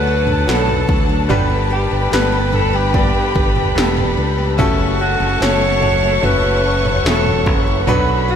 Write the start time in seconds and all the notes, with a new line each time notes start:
Already playing: D2 D3 F#3 A3 D4 F#4 A4 B4 F#5 A5
0.07 F#4
0.27 D4, floor tom
0.47 B1 F#3 A3 D4 F#4 A4 B4, snare
0.68 F#4, floor tom
0.88 D2 D4, kick
1.09 A3
1.29 G1 G2 G3 B3 D4 G4 B4 G5 B5, floor tom
1.50 B3
1.70 G4
1.91 G1 D4
2.11 G1 G3 B3 D4 G4 A4 B4, snare
2.32 G4
2.52 D4 A4, floor tom
2.73 B3 G4
2.93 G2 G3 B3 D4 G4 D5, kick, floor tom
3.14 B3
3.35 G1 G4, kick
3.55 D4, floor tom
3.75 E1 G3 B3 D4 G4 A4, snare
3.97 G4, floor tom
4.17 C#2 D4
4.38 B3
4.58 F#1 F#2 A3 C#4 E4 F#4 A4 E5 F#5 A5 C#6, kick, floor tom
4.79 A3
4.99 F#4
5.20 F#1 C#4
5.40 F#1 E3 A3 C#4 E4 F#4 A4 C#5, snare
5.61 F#4
5.82 C#4, floor tom
6.03 A3
6.22 F#1 F#2 A3 C#4 E4 F#4 A4 B4 C#5 C#6, floor tom
6.43 A3
6.64 F#4
6.84 C#4, floor tom
7.04 E1 E3 A3 C#4 E4 F#4 A4, snare
7.26 F#4, floor tom
7.46 F#1 C#4, kick
7.67 A3
7.87 B1 B2 F#3 B3 D4 F#4 B4 B5, floor tom
8.08 B3
8.28 F#4